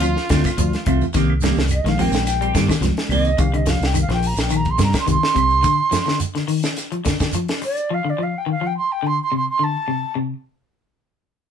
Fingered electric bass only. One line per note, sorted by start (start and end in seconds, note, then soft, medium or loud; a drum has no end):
0.00 0.15 D2 medium
0.30 0.44 D2 medium
0.58 0.72 D2 loud
0.87 1.00 C2 medium
1.15 1.55 C2 medium
1.57 1.83 C2 medium
1.84 2.11 A#1 medium
2.11 2.51 A#1 medium
2.55 2.69 G2 medium
2.70 muted fingered electric bass stroke soft
2.81 2.95 C2 medium
3.09 3.36 C2 medium
3.38 3.79 C2 medium
3.80 4.08 C2 medium
4.08 4.36 A#1 medium
4.37 4.77 A#1 medium
4.79 4.93 G2 medium
4.94 muted fingered electric bass stroke soft
5.08 5.21 C2 loud
5.36 5.63 C2 medium